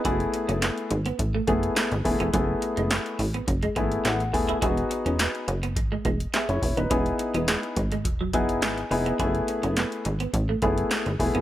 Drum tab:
HH |xxxxxxxxx-xxxxox|x-xxxxoxxxxxxxox|xxxxxxxxx-xxxxox|xxxxxxxxx-xxxxox|
CP |----x-------x---|----x-------x---|----x-------x---|----x-------x---|
SD |----o-------o---|----o-------o---|----o-------o---|----o-------o---|
BD |o-------o-o---o-|o-----o-o-o---o-|o-------o-o---o-|o-----o-o-o-----|

HH |xxxxxxxxx-xxxxox|
CP |----x-------x---|
SD |----o-------o---|
BD |o-------o-o---o-|